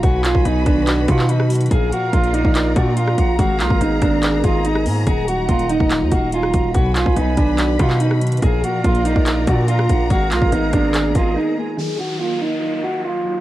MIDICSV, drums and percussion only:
0, 0, Header, 1, 2, 480
1, 0, Start_track
1, 0, Key_signature, -6, "minor"
1, 0, Tempo, 419580
1, 38, Time_signature, 4, 2, 24, 8
1, 15334, End_track
2, 0, Start_track
2, 0, Title_t, "Drums"
2, 37, Note_on_c, 9, 42, 88
2, 38, Note_on_c, 9, 36, 115
2, 151, Note_off_c, 9, 42, 0
2, 152, Note_off_c, 9, 36, 0
2, 278, Note_on_c, 9, 39, 108
2, 282, Note_on_c, 9, 42, 73
2, 392, Note_off_c, 9, 39, 0
2, 397, Note_off_c, 9, 42, 0
2, 397, Note_on_c, 9, 36, 104
2, 512, Note_off_c, 9, 36, 0
2, 518, Note_on_c, 9, 42, 73
2, 633, Note_off_c, 9, 42, 0
2, 756, Note_on_c, 9, 42, 75
2, 758, Note_on_c, 9, 36, 99
2, 870, Note_off_c, 9, 42, 0
2, 872, Note_off_c, 9, 36, 0
2, 997, Note_on_c, 9, 42, 83
2, 998, Note_on_c, 9, 39, 122
2, 1111, Note_off_c, 9, 42, 0
2, 1112, Note_off_c, 9, 39, 0
2, 1237, Note_on_c, 9, 42, 87
2, 1238, Note_on_c, 9, 36, 102
2, 1351, Note_off_c, 9, 42, 0
2, 1352, Note_off_c, 9, 36, 0
2, 1359, Note_on_c, 9, 39, 71
2, 1474, Note_off_c, 9, 39, 0
2, 1474, Note_on_c, 9, 42, 78
2, 1588, Note_off_c, 9, 42, 0
2, 1598, Note_on_c, 9, 37, 92
2, 1712, Note_off_c, 9, 37, 0
2, 1717, Note_on_c, 9, 42, 77
2, 1717, Note_on_c, 9, 46, 86
2, 1777, Note_off_c, 9, 42, 0
2, 1777, Note_on_c, 9, 42, 65
2, 1832, Note_off_c, 9, 46, 0
2, 1837, Note_off_c, 9, 42, 0
2, 1837, Note_on_c, 9, 42, 56
2, 1897, Note_off_c, 9, 42, 0
2, 1897, Note_on_c, 9, 42, 46
2, 1956, Note_off_c, 9, 42, 0
2, 1956, Note_on_c, 9, 42, 84
2, 1957, Note_on_c, 9, 36, 109
2, 2071, Note_off_c, 9, 42, 0
2, 2072, Note_off_c, 9, 36, 0
2, 2201, Note_on_c, 9, 42, 73
2, 2316, Note_off_c, 9, 42, 0
2, 2437, Note_on_c, 9, 42, 76
2, 2438, Note_on_c, 9, 36, 95
2, 2552, Note_off_c, 9, 36, 0
2, 2552, Note_off_c, 9, 42, 0
2, 2557, Note_on_c, 9, 42, 43
2, 2672, Note_off_c, 9, 42, 0
2, 2675, Note_on_c, 9, 42, 80
2, 2789, Note_off_c, 9, 42, 0
2, 2798, Note_on_c, 9, 36, 96
2, 2912, Note_off_c, 9, 36, 0
2, 2917, Note_on_c, 9, 42, 81
2, 2918, Note_on_c, 9, 39, 122
2, 3032, Note_off_c, 9, 39, 0
2, 3032, Note_off_c, 9, 42, 0
2, 3157, Note_on_c, 9, 42, 82
2, 3158, Note_on_c, 9, 36, 102
2, 3271, Note_off_c, 9, 42, 0
2, 3272, Note_off_c, 9, 36, 0
2, 3394, Note_on_c, 9, 42, 73
2, 3509, Note_off_c, 9, 42, 0
2, 3518, Note_on_c, 9, 37, 92
2, 3632, Note_off_c, 9, 37, 0
2, 3638, Note_on_c, 9, 36, 100
2, 3638, Note_on_c, 9, 42, 81
2, 3752, Note_off_c, 9, 42, 0
2, 3753, Note_off_c, 9, 36, 0
2, 3877, Note_on_c, 9, 42, 87
2, 3878, Note_on_c, 9, 36, 114
2, 3991, Note_off_c, 9, 42, 0
2, 3992, Note_off_c, 9, 36, 0
2, 4117, Note_on_c, 9, 39, 107
2, 4122, Note_on_c, 9, 42, 74
2, 4231, Note_off_c, 9, 39, 0
2, 4236, Note_off_c, 9, 42, 0
2, 4237, Note_on_c, 9, 36, 100
2, 4352, Note_off_c, 9, 36, 0
2, 4357, Note_on_c, 9, 42, 72
2, 4472, Note_off_c, 9, 42, 0
2, 4595, Note_on_c, 9, 42, 73
2, 4597, Note_on_c, 9, 37, 71
2, 4598, Note_on_c, 9, 36, 98
2, 4709, Note_off_c, 9, 42, 0
2, 4711, Note_off_c, 9, 37, 0
2, 4712, Note_off_c, 9, 36, 0
2, 4837, Note_on_c, 9, 42, 83
2, 4838, Note_on_c, 9, 39, 122
2, 4951, Note_off_c, 9, 42, 0
2, 4952, Note_off_c, 9, 39, 0
2, 5076, Note_on_c, 9, 42, 86
2, 5078, Note_on_c, 9, 36, 103
2, 5190, Note_off_c, 9, 42, 0
2, 5193, Note_off_c, 9, 36, 0
2, 5314, Note_on_c, 9, 42, 78
2, 5429, Note_off_c, 9, 42, 0
2, 5438, Note_on_c, 9, 37, 92
2, 5552, Note_off_c, 9, 37, 0
2, 5557, Note_on_c, 9, 46, 81
2, 5672, Note_off_c, 9, 46, 0
2, 5796, Note_on_c, 9, 42, 87
2, 5798, Note_on_c, 9, 36, 111
2, 5911, Note_off_c, 9, 42, 0
2, 5912, Note_off_c, 9, 36, 0
2, 6042, Note_on_c, 9, 42, 73
2, 6156, Note_off_c, 9, 42, 0
2, 6278, Note_on_c, 9, 42, 78
2, 6279, Note_on_c, 9, 36, 95
2, 6392, Note_off_c, 9, 42, 0
2, 6393, Note_off_c, 9, 36, 0
2, 6398, Note_on_c, 9, 42, 43
2, 6512, Note_off_c, 9, 42, 0
2, 6515, Note_on_c, 9, 42, 80
2, 6629, Note_off_c, 9, 42, 0
2, 6638, Note_on_c, 9, 36, 94
2, 6752, Note_off_c, 9, 36, 0
2, 6756, Note_on_c, 9, 39, 122
2, 6756, Note_on_c, 9, 42, 85
2, 6870, Note_off_c, 9, 42, 0
2, 6871, Note_off_c, 9, 39, 0
2, 6995, Note_on_c, 9, 42, 80
2, 6998, Note_on_c, 9, 36, 97
2, 7110, Note_off_c, 9, 42, 0
2, 7112, Note_off_c, 9, 36, 0
2, 7234, Note_on_c, 9, 42, 71
2, 7348, Note_off_c, 9, 42, 0
2, 7358, Note_on_c, 9, 37, 94
2, 7473, Note_off_c, 9, 37, 0
2, 7477, Note_on_c, 9, 42, 82
2, 7479, Note_on_c, 9, 36, 97
2, 7592, Note_off_c, 9, 42, 0
2, 7593, Note_off_c, 9, 36, 0
2, 7716, Note_on_c, 9, 42, 82
2, 7718, Note_on_c, 9, 36, 110
2, 7831, Note_off_c, 9, 42, 0
2, 7832, Note_off_c, 9, 36, 0
2, 7957, Note_on_c, 9, 39, 105
2, 7961, Note_on_c, 9, 42, 72
2, 8071, Note_off_c, 9, 39, 0
2, 8076, Note_off_c, 9, 42, 0
2, 8078, Note_on_c, 9, 36, 106
2, 8192, Note_off_c, 9, 36, 0
2, 8197, Note_on_c, 9, 42, 73
2, 8312, Note_off_c, 9, 42, 0
2, 8434, Note_on_c, 9, 42, 77
2, 8438, Note_on_c, 9, 36, 99
2, 8549, Note_off_c, 9, 42, 0
2, 8552, Note_off_c, 9, 36, 0
2, 8677, Note_on_c, 9, 39, 123
2, 8677, Note_on_c, 9, 42, 83
2, 8791, Note_off_c, 9, 42, 0
2, 8792, Note_off_c, 9, 39, 0
2, 8916, Note_on_c, 9, 42, 89
2, 8918, Note_on_c, 9, 36, 101
2, 9031, Note_off_c, 9, 42, 0
2, 9033, Note_off_c, 9, 36, 0
2, 9038, Note_on_c, 9, 39, 70
2, 9152, Note_off_c, 9, 39, 0
2, 9154, Note_on_c, 9, 42, 75
2, 9268, Note_off_c, 9, 42, 0
2, 9278, Note_on_c, 9, 37, 92
2, 9392, Note_off_c, 9, 37, 0
2, 9397, Note_on_c, 9, 46, 84
2, 9398, Note_on_c, 9, 42, 75
2, 9458, Note_off_c, 9, 42, 0
2, 9458, Note_on_c, 9, 42, 66
2, 9512, Note_off_c, 9, 46, 0
2, 9518, Note_off_c, 9, 42, 0
2, 9518, Note_on_c, 9, 42, 55
2, 9578, Note_off_c, 9, 42, 0
2, 9578, Note_on_c, 9, 42, 45
2, 9636, Note_off_c, 9, 42, 0
2, 9636, Note_on_c, 9, 42, 85
2, 9638, Note_on_c, 9, 36, 109
2, 9751, Note_off_c, 9, 42, 0
2, 9752, Note_off_c, 9, 36, 0
2, 9882, Note_on_c, 9, 42, 73
2, 9996, Note_off_c, 9, 42, 0
2, 10118, Note_on_c, 9, 42, 74
2, 10119, Note_on_c, 9, 36, 91
2, 10232, Note_off_c, 9, 42, 0
2, 10233, Note_off_c, 9, 36, 0
2, 10238, Note_on_c, 9, 42, 44
2, 10353, Note_off_c, 9, 42, 0
2, 10356, Note_on_c, 9, 42, 81
2, 10470, Note_off_c, 9, 42, 0
2, 10479, Note_on_c, 9, 36, 96
2, 10593, Note_off_c, 9, 36, 0
2, 10598, Note_on_c, 9, 39, 121
2, 10598, Note_on_c, 9, 42, 86
2, 10712, Note_off_c, 9, 42, 0
2, 10713, Note_off_c, 9, 39, 0
2, 10837, Note_on_c, 9, 42, 82
2, 10839, Note_on_c, 9, 36, 100
2, 10952, Note_off_c, 9, 42, 0
2, 10953, Note_off_c, 9, 36, 0
2, 11075, Note_on_c, 9, 42, 74
2, 11189, Note_off_c, 9, 42, 0
2, 11199, Note_on_c, 9, 37, 96
2, 11313, Note_off_c, 9, 37, 0
2, 11318, Note_on_c, 9, 42, 82
2, 11319, Note_on_c, 9, 36, 97
2, 11433, Note_off_c, 9, 36, 0
2, 11433, Note_off_c, 9, 42, 0
2, 11557, Note_on_c, 9, 42, 86
2, 11558, Note_on_c, 9, 36, 111
2, 11672, Note_off_c, 9, 42, 0
2, 11673, Note_off_c, 9, 36, 0
2, 11798, Note_on_c, 9, 39, 104
2, 11802, Note_on_c, 9, 42, 72
2, 11912, Note_off_c, 9, 39, 0
2, 11917, Note_off_c, 9, 42, 0
2, 11918, Note_on_c, 9, 36, 99
2, 12032, Note_off_c, 9, 36, 0
2, 12038, Note_on_c, 9, 42, 73
2, 12153, Note_off_c, 9, 42, 0
2, 12276, Note_on_c, 9, 42, 77
2, 12278, Note_on_c, 9, 36, 96
2, 12278, Note_on_c, 9, 37, 70
2, 12390, Note_off_c, 9, 42, 0
2, 12392, Note_off_c, 9, 37, 0
2, 12393, Note_off_c, 9, 36, 0
2, 12518, Note_on_c, 9, 42, 86
2, 12519, Note_on_c, 9, 39, 126
2, 12632, Note_off_c, 9, 42, 0
2, 12633, Note_off_c, 9, 39, 0
2, 12757, Note_on_c, 9, 42, 86
2, 12758, Note_on_c, 9, 36, 100
2, 12871, Note_off_c, 9, 42, 0
2, 12873, Note_off_c, 9, 36, 0
2, 15334, End_track
0, 0, End_of_file